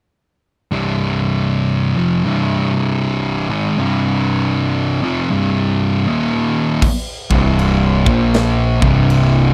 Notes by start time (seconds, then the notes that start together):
0.71 C2 G2 C3
1.96 F2 C3 F3
2.24 C2 G2 C3
3.50 G#2 D#3 G#3
3.78 C2 G2 C3
5.03 F2 C3 F3
5.30 C2 G2 C3
6.07 D#2 A#2 D#3
6.82 kick, crash
7.30 C1 C2 G2 C3, kick
7.59 crash
8.06 A#1 A#2 F3 A#3, kick
8.34 snare, crash
8.82 C1 C2 G2 C3, kick
9.10 crash